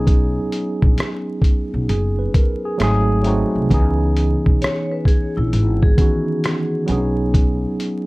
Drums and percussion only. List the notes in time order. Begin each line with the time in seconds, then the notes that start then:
0.07 kick, closed hi-hat
0.52 closed hi-hat
0.82 kick
0.98 cross-stick, closed hi-hat
1.42 kick, closed hi-hat
1.89 closed hi-hat
2.34 kick, closed hi-hat
2.80 cross-stick, closed hi-hat
3.24 closed hi-hat
3.70 kick, closed hi-hat
4.17 closed hi-hat
4.46 kick
4.62 cross-stick, closed hi-hat
5.05 kick, closed hi-hat
5.53 closed hi-hat
5.83 kick
5.98 kick, closed hi-hat
6.44 cross-stick, closed hi-hat
6.88 closed hi-hat
7.34 kick, closed hi-hat
7.80 closed hi-hat